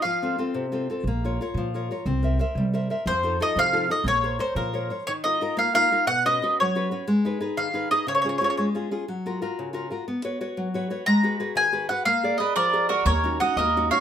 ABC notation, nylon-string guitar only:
X:1
M:6/8
L:1/8
Q:3/8=120
K:Bbm
V:1 name="Nylon-string guitar"
F, [CF=A] [CFA] C, [CFA] [CFA] | B, [FBd] [FBd] F, [FBd] [FBd] | C [Bc=e] [Bce] =G, [Bce] [Bce] | F, [EF=A] [EFA] C, [EFA] [EFA] |
B, [Bcd] [Bcd] F, [Bcd] [Bcd] | [K:Ebm] E, [EFB] [EFB] B, [EFB] [EFB] | =B,, [^C^F=B] [CFB] ^F, [CFB] [CFB] | A, [EAc] [EAc] E, [EAc] [EAc] |
D, [DFA] [DFA] A, [DFA] [DFA] | G, [FGB] [FGB] D, [FGB] [FGB] | =B, [^F=B^c] [FBc] ^F, [FBc] [FBc] | A, [GAc] [GAc] E, [GAc] [GAc] |
B, [AB=d] [ABd] F, [ABd] [ABd] | E, [DEG] [DEG] B, [DEG] [DEG] |]